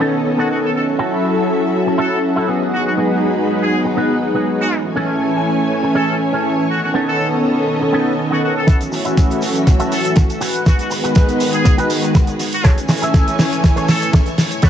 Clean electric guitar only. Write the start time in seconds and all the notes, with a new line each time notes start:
0.00 B3 C#4 D#4 A4
0.38 B3 C#4 D#4 A4
0.99 E4 F#4 A4
1.86 muted clean electric guitar stroke
1.98 E4 F#4 A4
2.36 E4 F#4 A4
2.48 B3 F#4 G#4
2.97 B3 F#4 G#4
3.85 muted clean electric guitar stroke
3.96 B3 F#4 B4
4.34 B3 F#4 G#4
4.96 C#4 G#4 A4
5.83 muted clean electric guitar stroke
5.95 C#4 G#4 A4
6.33 C#4 G#4 A4
6.94 B3 C#4 D#4 A4
7.81 muted clean electric guitar stroke
7.93 B3 C#4 D#4 A4
8.31 B3 C#4 D#4 A4
8.67 E4 F#4 A4
8.92 muted clean electric guitar stroke
9.05 E4 F#4 G#4
9.79 E4 F#4 A4
10.04 muted clean electric guitar stroke
10.16 muted clean electric guitar stroke
10.29 muted clean electric guitar stroke
10.41 F#4 G#4 B4
10.90 muted clean electric guitar stroke
11.04 F#4 G#4 B4
11.78 F#4 G#4 B4
12.03 muted clean electric guitar stroke
12.14 muted clean electric guitar stroke
12.27 muted clean electric guitar stroke
12.64 G#4 A4 C#5
12.89 muted clean electric guitar stroke
13.02 G#4 A4 E5
13.76 G#4 A4 C#5
14.01 muted clean electric guitar stroke
14.13 muted clean electric guitar stroke
14.26 muted clean electric guitar stroke
14.62 D#4 A4 B4 C#5